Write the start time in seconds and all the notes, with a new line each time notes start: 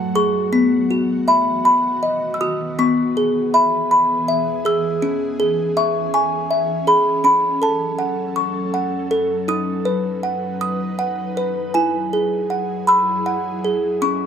Already playing: F#3 A3 F#4 A4 F#5 A5
0.15 G#4 C#6
0.52 B3 F#4
0.91 F#4
1.28 E5 B5
1.65 B5
2.03 D#5
2.34 E6
2.41 F#4 D#6
2.79 E3 B3 G#4 C#6
3.17 G#4
3.54 E5 B5
3.91 B5
4.28 E5
4.65 G#4 E6
5.02 C#4
5.40 G#4
5.77 E5 C#6
6.14 G#5 C#6
6.51 E5
6.87 G#4 B5
7.24 F#3 C#4 A4 B5
7.62 A4 A5
7.99 F#5
8.36 C#6
8.74 F#5
9.11 A4
9.48 D#4 B4 D#6
9.85 B4
10.23 F#5
10.61 D#6
10.99 F#5
11.37 B4
11.74 F#3 E4 G#4 G#5
12.13 G#4
12.50 F#5
12.87 B5 E6
13.26 F#5
13.64 G#4
14.02 C#4 C#6